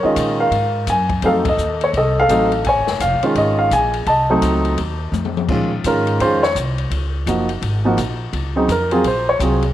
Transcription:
Already playing: grand piano A#4
0.03 grand piano D#3 G#3 C#4 F4 D#5, muted upright bass stroke
0.16 upright bass A#2, kick, hi-hat pedal, ride
0.40 grand piano A#4 F5
0.51 upright bass G#2, kick, ride
0.87 upright bass F#2, grand piano G#5, kick, hi-hat pedal, ride
1.09 kick, ride
1.22 upright bass F2, grand piano F#3 A3 C4 D#4 F5, kick, ride
1.27 grand piano A4
1.45 grand piano D#5, kick, ride
1.57 upright bass D#2, hi-hat pedal
1.81 grand piano C#5, ride
1.93 upright bass C2, grand piano D#5, kick, ride
1.98 grand piano A4
2.20 grand piano A4 F5
2.28 upright bass A1, grand piano F#3 A3 C4 D#4, kick, hi-hat pedal, ride
2.52 ride
2.64 upright bass A#1, grand piano G#5, kick, ride
2.69 grand piano C#5
2.76 upright bass G#1
2.87 upright bass F1, snare
3.00 upright bass F1, grand piano F5, kick, hi-hat pedal, ride
3.20 grand piano D#3 G#3 C#4 F4, muted upright bass stroke, ride
3.35 upright bass G#1, grand piano D#5, kick, ride
3.40 grand piano G#4
3.59 grand piano F5
3.71 upright bass A#1, grand piano G#5, kick, hi-hat pedal, ride
3.94 ride
4.06 upright bass C2, grand piano D#5 A5, kick, ride
4.30 grand piano F#3 A3 C4 D#4
4.42 upright bass C#2, kick, hi-hat pedal, ride
4.65 ride
4.77 upright bass D#2, kick, ride
5.12 upright bass F2, hi-hat pedal, high tom
5.25 mid tom
5.37 mid tom
5.49 upright bass A#2, grand piano D#3 G#3 C#4 F4, kick, crash
5.84 upright bass G#2, grand piano D#3 G#3 C#4 F4 A#4, kick, hi-hat pedal, ride
6.07 ride
6.20 upright bass F2, grand piano D#3 G#3 C#4 F4 C5, kick, ride
6.43 grand piano C#5, snare
6.55 upright bass C2, kick, hi-hat pedal, ride
6.78 ride
6.90 upright bass C#2, kick, ride
7.26 upright bass F#1, grand piano F3 A#3 D#4 F#4, kick, hi-hat pedal, ride
7.49 ride
7.62 upright bass G#1, kick, ride
7.85 grand piano F3 A#3 D#4 F#4
7.97 upright bass A#1, kick, hi-hat pedal, ride
8.33 upright bass C#2, kick, ride
8.56 grand piano C#3 F#3 C4 D#4
8.68 upright bass F2, grand piano A#4, kick, hi-hat pedal, ride
8.91 grand piano F#3 C4 F4 G#4, ride
9.04 upright bass A#1, grand piano C5, kick, ride
9.29 grand piano C#5
9.39 upright bass C2, grand piano F#3 C4 F4 G#4, kick, hi-hat pedal, ride
9.62 ride

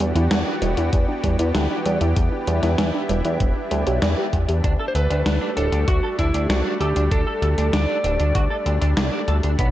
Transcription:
Already playing: analog synth pad E3 B3 D4 F#4 G4
0.00 analog synth bass E2, synth arpeggio sound G3, closed hi-hat
0.15 analog synth bass E2, synth arpeggio sound E4, closed hi-hat
0.31 analog synth bass E2, synth arpeggio sound G3, snare, closed hi-hat
0.47 synth arpeggio sound D4
0.62 analog synth bass E1, synth arpeggio sound G3, closed hi-hat
0.77 analog synth bass E2, synth arpeggio sound E4, closed hi-hat
0.93 analog synth bass E2, synth arpeggio sound G3, kick, closed hi-hat
1.09 synth arpeggio sound D4
1.24 analog synth bass E2, synth arpeggio sound G3, kick, closed hi-hat
1.39 analog synth bass E2, synth arpeggio sound E4, closed hi-hat
1.55 analog synth bass D2, synth arpeggio sound G3, snare, closed hi-hat
1.70 synth arpeggio sound D4
1.86 analog synth bass E2, synth arpeggio sound G3, closed hi-hat
2.01 analog synth bass E2, synth arpeggio sound E4, closed hi-hat
2.16 analog synth bass E2, synth arpeggio sound G3, analog synth pad E4, kick, closed hi-hat
2.32 synth arpeggio sound D4
2.47 analog synth bass E2, synth arpeggio sound G3, closed hi-hat
2.63 analog synth bass E2, synth arpeggio sound E4, snare, closed hi-hat
2.78 analog synth bass E2, synth arpeggio sound G3, snare, closed hi-hat
2.94 synth arpeggio sound D4
3.09 analog synth bass E1, synth arpeggio sound G3, closed hi-hat
3.25 analog synth bass E2, synth arpeggio sound E4, closed hi-hat
3.40 analog synth bass E1, synth arpeggio sound G3, kick, closed hi-hat
3.56 synth arpeggio sound D4
3.71 analog synth bass D2, synth arpeggio sound G3, closed hi-hat
3.87 analog synth bass B1, synth arpeggio sound G4, closed hi-hat
4.02 analog synth bass E2, synth arpeggio sound D5, snare, closed hi-hat
4.18 synth arpeggio sound G4
4.33 analog synth bass E2, synth arpeggio sound G3, kick, closed hi-hat
4.49 analog synth bass E2, synth arpeggio sound G4, closed hi-hat
4.64 analog synth bass D2, analog synth pad G3 A3, clean electric guitar D4, kick, closed hi-hat
4.79 clean electric guitar A4
4.88 lead electric guitar C5
4.95 analog synth bass D2, clean electric guitar A4, lead electric guitar B4, closed hi-hat
5.10 analog synth bass D2, clean electric guitar D4, closed hi-hat
5.26 analog synth bass D2, clean electric guitar D4, snare, closed hi-hat
5.41 clean electric guitar D4
5.57 analog synth bass D1, clean electric guitar D4, lead electric guitar A4, closed hi-hat
5.72 analog synth bass D2, clean electric guitar D4, closed hi-hat
5.88 analog synth bass D2, clean electric guitar F#4, lead electric guitar F#4, kick, closed hi-hat
6.03 clean electric guitar A4
6.18 analog synth bass D2, clean electric guitar D4, lead electric guitar E4, kick, closed hi-hat
6.34 analog synth bass D2, clean electric guitar D4, closed hi-hat
6.49 analog synth bass C2, clean electric guitar D4, lead electric guitar F#4, snare, closed hi-hat
6.65 clean electric guitar D4
6.80 analog synth bass D2, lead electric guitar G4, clean electric guitar A4, closed hi-hat
6.96 analog synth bass D2, clean electric guitar D4, closed hi-hat
7.11 analog synth bass D2, clean electric guitar D4, lead electric guitar A4, kick, closed hi-hat
7.27 clean electric guitar A4
7.42 analog synth bass D2, clean electric guitar A4, closed hi-hat
7.58 analog synth bass D2, clean electric guitar D4, closed hi-hat
7.73 analog synth bass D2, clean electric guitar D4, lead electric guitar D5, snare, closed hi-hat
7.89 clean electric guitar D4
8.04 analog synth bass D1, clean electric guitar D4, closed hi-hat
8.19 analog synth bass D2, clean electric guitar D4, closed hi-hat
8.35 analog synth bass D2, clean electric guitar F#4, kick, closed hi-hat
8.50 clean electric guitar A4
8.66 analog synth bass D2, clean electric guitar D4, closed hi-hat
8.81 analog synth bass D2, clean electric guitar D4, closed hi-hat
8.97 analog synth bass C2, clean electric guitar D4, snare, closed hi-hat
9.12 clean electric guitar D4
9.28 analog synth bass D2, clean electric guitar A4, closed hi-hat
9.43 analog synth bass D2, clean electric guitar D4, closed hi-hat
9.59 analog synth bass B1, analog synth pad F#3 B3, clean electric guitar B3, kick, closed hi-hat

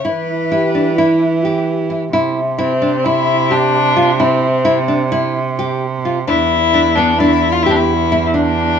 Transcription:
0.05 cello E3, nylon-string guitar E4, violin B4
0.52 nylon-string guitar E4, french horn G4
0.75 nylon-string guitar D4
0.97 french horn E4, nylon-string guitar E4
1.45 nylon-string guitar G4, french horn G4
1.90 nylon-string guitar E4
2.13 cello C3, nylon-string guitar E4
2.58 violin C4, nylon-string guitar E4
2.82 nylon-string guitar D4
3.04 violin E4, nylon-string guitar E4
3.51 violin D4, nylon-string guitar G4
3.96 nylon-string guitar F4
4.20 violin C4, nylon-string guitar E4
4.65 nylon-string guitar E4
4.88 nylon-string guitar D4
5.12 nylon-string guitar E4
5.59 nylon-string guitar G4
6.05 nylon-string guitar F4
6.27 cello E2, nylon-string guitar D4, violin E4
6.74 nylon-string guitar D4
6.95 nylon-string guitar B3, violin D4
7.19 nylon-string guitar D4, violin E4
7.52 violin F4
7.63 violin E4, nylon-string guitar G4
7.71 violin D4
7.75 violin E4
8.12 nylon-string guitar E4
8.26 violin E4
8.34 violin D4, nylon-string guitar D4

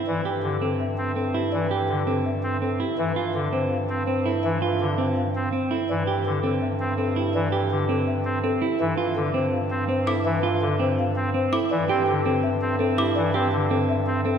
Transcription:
Already playing: clean electric guitar E4, marimba A4
0.07 bass clarinet G2, pipe organ E3, marimba D5
0.25 clean electric guitar G4
0.43 pipe organ D3, marimba G4
0.61 clean electric guitar C4, marimba A4
0.80 marimba E5
0.98 pipe organ C4
1.16 clean electric guitar C4, marimba A4
1.34 clean electric guitar E4, marimba G4
1.52 pipe organ E3, marimba D5
1.71 clean electric guitar G4
1.89 pipe organ D3, marimba G4
2.07 clean electric guitar C4, marimba A4
2.26 marimba E5
2.43 pipe organ C4
2.62 clean electric guitar C4, marimba A4
2.80 clean electric guitar E4, marimba G4
2.98 bass clarinet G2, pipe organ E3, marimba E5
3.16 clean electric guitar F4
3.35 pipe organ D3, marimba A4
3.53 clean electric guitar C4, marimba C5
3.71 marimba F5
3.89 pipe organ C4
4.07 clean electric guitar C4, marimba C5
4.24 clean electric guitar E4, marimba A4
4.43 pipe organ E3, marimba E5
4.62 clean electric guitar F4
4.79 pipe organ D3, marimba A4
4.98 clean electric guitar C4, marimba C5
5.16 marimba F5
5.35 pipe organ C4
5.52 clean electric guitar C4, marimba C5
5.71 clean electric guitar E4, marimba A4
5.89 bass clarinet G2, pipe organ E3, marimba D5
6.07 clean electric guitar G4
6.25 pipe organ D3, marimba G4
6.43 clean electric guitar C4, marimba A4
6.61 marimba E5
6.80 pipe organ C4
6.98 clean electric guitar C4, marimba A4
7.16 clean electric guitar E4, marimba G4
7.34 pipe organ E3, marimba D5
7.52 clean electric guitar G4
7.71 pipe organ D3, marimba G4
7.89 clean electric guitar C4, marimba A4
8.07 marimba E5
8.25 pipe organ C4
8.44 clean electric guitar C4, marimba A4
8.62 clean electric guitar E4, marimba G4
8.80 bass clarinet G2, pipe organ E3, marimba E5
8.98 clean electric guitar F4
9.16 pipe organ D3, marimba A4
9.34 clean electric guitar C4, marimba C5
9.53 marimba F5
9.70 pipe organ C4
9.88 clean electric guitar C4, marimba C5
10.07 clean electric guitar E4, marimba A4, xylophone D6
10.25 pipe organ E3, marimba E5
10.43 clean electric guitar F4
10.61 pipe organ D3, marimba A4
10.79 clean electric guitar C4, marimba C5
10.98 marimba F5
11.16 pipe organ C4
11.34 clean electric guitar C4, marimba C5
11.53 clean electric guitar E4, marimba A4, xylophone D6
11.71 bass clarinet G2, pipe organ E3, marimba D5
11.89 pipe organ C4, clean electric guitar G4
12.07 pipe organ D3, marimba G4
12.25 clean electric guitar C4, marimba A4
12.43 marimba E5
12.62 pipe organ C4
12.79 clean electric guitar C4, marimba A4
12.98 clean electric guitar E4, marimba G4, xylophone D6
13.16 pipe organ E3, marimba D5
13.34 pipe organ C4, clean electric guitar G4
13.52 pipe organ D3, marimba G4
13.70 clean electric guitar C4, marimba A4
13.89 marimba E5
14.07 pipe organ C4
14.25 clean electric guitar C4, marimba A4

